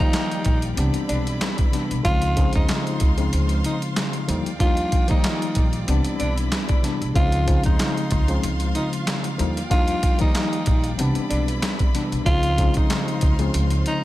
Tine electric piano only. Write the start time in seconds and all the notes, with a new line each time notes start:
Already playing: D#3 F3 G3
0.00 A#3 D#4
0.76 E3 G3 B3 C4 D4
1.71 C3 E3 G3 B3 D4
2.03 C#3 F3 G#3 C4 D#4
2.36 C#3 F3 G#3 C4 D#4
3.17 C#3 F3 G#3 C4 D#4
4.27 D3 F3 G3 A#3 D#4
4.59 F3 G3 A#3 D4 D#4
5.07 D#3 F3 G3 A#3 D#4
5.87 E3 G3 B3 C4 D4
6.82 C3 E3 G3 B3 D4
7.14 C#3 F3 G#3 C4 D#4
7.46 C#3 F3 G#3 C4 D#4
8.28 C#3 F3 G#3 C4 D#4
9.38 D3 F3 G3 A#3 D#4
9.70 F3 G3 A#3 D4 D#4
10.18 D#3 F3 G3 A#3 D#4
10.98 E3 G3 B3 C4 D4
11.93 C3 E3 G3 B3 D4
12.25 C#3 F3 G#3 C4 D#4
12.57 C#3 F3 G#3 C4 D#4
13.39 C#3 F3 G#3 C4 D#4